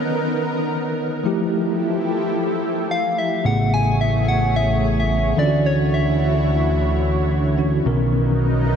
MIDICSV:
0, 0, Header, 1, 5, 480
1, 0, Start_track
1, 0, Tempo, 550459
1, 1087, Time_signature, 4, 2, 24, 8
1, 7639, End_track
2, 0, Start_track
2, 0, Title_t, "Soft synth lead"
2, 0, Program_c, 0, 80
2, 2538, Note_on_c, 0, 77, 92
2, 2776, Note_on_c, 0, 76, 95
2, 2789, Note_off_c, 0, 77, 0
2, 3017, Note_on_c, 0, 78, 104
2, 3030, Note_off_c, 0, 76, 0
2, 3259, Note_on_c, 0, 80, 104
2, 3272, Note_off_c, 0, 78, 0
2, 3496, Note_on_c, 0, 76, 102
2, 3509, Note_off_c, 0, 80, 0
2, 3735, Note_on_c, 0, 78, 99
2, 3749, Note_off_c, 0, 76, 0
2, 3978, Note_on_c, 0, 76, 113
2, 3992, Note_off_c, 0, 78, 0
2, 4352, Note_off_c, 0, 76, 0
2, 4357, Note_on_c, 0, 76, 102
2, 4699, Note_on_c, 0, 74, 90
2, 4712, Note_off_c, 0, 76, 0
2, 4938, Note_on_c, 0, 73, 93
2, 4951, Note_off_c, 0, 74, 0
2, 5179, Note_on_c, 0, 76, 95
2, 5192, Note_off_c, 0, 73, 0
2, 6133, Note_off_c, 0, 76, 0
2, 7639, End_track
3, 0, Start_track
3, 0, Title_t, "Analog synth pad"
3, 0, Program_c, 1, 89
3, 0, Note_on_c, 1, 59, 79
3, 0, Note_on_c, 1, 63, 90
3, 0, Note_on_c, 1, 70, 81
3, 1067, Note_off_c, 1, 63, 0
3, 1067, Note_off_c, 1, 70, 0
3, 1068, Note_off_c, 1, 59, 0
3, 1088, Note_on_c, 1, 64, 76
3, 1088, Note_on_c, 1, 67, 77
3, 1089, Note_on_c, 1, 53, 80
3, 1089, Note_on_c, 1, 69, 89
3, 2988, Note_off_c, 1, 53, 0
3, 2988, Note_off_c, 1, 64, 0
3, 2988, Note_off_c, 1, 67, 0
3, 2989, Note_off_c, 1, 69, 0
3, 3005, Note_on_c, 1, 68, 81
3, 3005, Note_on_c, 1, 73, 89
3, 3006, Note_on_c, 1, 57, 74
3, 4669, Note_off_c, 1, 57, 0
3, 4669, Note_off_c, 1, 68, 0
3, 4688, Note_on_c, 1, 50, 81
3, 4688, Note_on_c, 1, 64, 78
3, 4689, Note_on_c, 1, 66, 90
3, 6811, Note_off_c, 1, 73, 0
3, 6825, Note_off_c, 1, 50, 0
3, 6825, Note_off_c, 1, 64, 0
3, 6826, Note_off_c, 1, 66, 0
3, 6847, Note_on_c, 1, 59, 75
3, 6848, Note_on_c, 1, 70, 82
3, 6849, Note_on_c, 1, 63, 92
3, 7639, Note_off_c, 1, 59, 0
3, 7639, Note_off_c, 1, 63, 0
3, 7639, Note_off_c, 1, 70, 0
3, 7639, End_track
4, 0, Start_track
4, 0, Title_t, "Tine electric piano"
4, 0, Program_c, 2, 4
4, 0, Control_c, 2, 64, 127
4, 0, Note_on_c, 2, 51, 74
4, 0, Note_on_c, 2, 59, 69
4, 0, Note_on_c, 2, 61, 68
4, 0, Note_on_c, 2, 70, 82
4, 1048, Note_off_c, 2, 51, 0
4, 1052, Note_off_c, 2, 59, 0
4, 1057, Note_off_c, 2, 61, 0
4, 1061, Note_off_c, 2, 70, 0
4, 1077, Note_on_c, 2, 53, 74
4, 1085, Note_on_c, 2, 57, 69
4, 1095, Note_on_c, 2, 64, 68
4, 1099, Control_c, 2, 64, 0
4, 1104, Note_on_c, 2, 67, 80
4, 1274, Control_c, 2, 64, 127
4, 2967, Note_off_c, 2, 53, 0
4, 2971, Note_off_c, 2, 57, 0
4, 2976, Note_off_c, 2, 64, 0
4, 2980, Note_off_c, 2, 67, 0
4, 2999, Note_on_c, 2, 49, 61
4, 3007, Note_on_c, 2, 57, 57
4, 3016, Note_on_c, 2, 59, 58
4, 3018, Control_c, 2, 64, 0
4, 3026, Note_on_c, 2, 68, 67
4, 3169, Control_c, 2, 64, 127
4, 4649, Note_off_c, 2, 49, 0
4, 4653, Note_off_c, 2, 57, 0
4, 4657, Note_off_c, 2, 59, 0
4, 4663, Note_off_c, 2, 68, 0
4, 4676, Note_on_c, 2, 52, 67
4, 4685, Note_on_c, 2, 61, 61
4, 4694, Note_on_c, 2, 62, 58
4, 4696, Control_c, 2, 64, 0
4, 4704, Note_on_c, 2, 65, 55
4, 4760, Note_on_c, 2, 66, 71
4, 4761, Note_off_c, 2, 65, 0
4, 4854, Control_c, 2, 64, 127
4, 6567, Note_off_c, 2, 52, 0
4, 6571, Note_off_c, 2, 61, 0
4, 6575, Note_off_c, 2, 62, 0
4, 6603, Note_on_c, 2, 52, 57
4, 6606, Note_off_c, 2, 66, 0
4, 6606, Note_on_c, 2, 61, 56
4, 6612, Note_on_c, 2, 62, 54
4, 6617, Note_on_c, 2, 66, 64
4, 6836, Note_on_c, 2, 49, 58
4, 6844, Note_off_c, 2, 61, 0
4, 6845, Note_off_c, 2, 52, 0
4, 6845, Note_on_c, 2, 59, 65
4, 6849, Note_off_c, 2, 62, 0
4, 6851, Note_off_c, 2, 66, 0
4, 6855, Note_on_c, 2, 61, 69
4, 6858, Control_c, 2, 64, 0
4, 6863, Note_on_c, 2, 70, 82
4, 6892, Note_on_c, 2, 51, 76
4, 6907, Note_off_c, 2, 49, 0
4, 7000, Control_c, 2, 64, 127
4, 7639, Note_off_c, 2, 51, 0
4, 7639, Note_off_c, 2, 59, 0
4, 7639, Note_off_c, 2, 61, 0
4, 7639, Note_off_c, 2, 70, 0
4, 7639, End_track
5, 0, Start_track
5, 0, Title_t, "Analog synth bass"
5, 0, Program_c, 3, 38
5, 3006, Note_on_c, 3, 33, 88
5, 4652, Note_off_c, 3, 33, 0
5, 4688, Note_on_c, 3, 38, 80
5, 6812, Note_off_c, 3, 38, 0
5, 6849, Note_on_c, 3, 35, 86
5, 7639, Note_off_c, 3, 35, 0
5, 7639, End_track
0, 0, End_of_file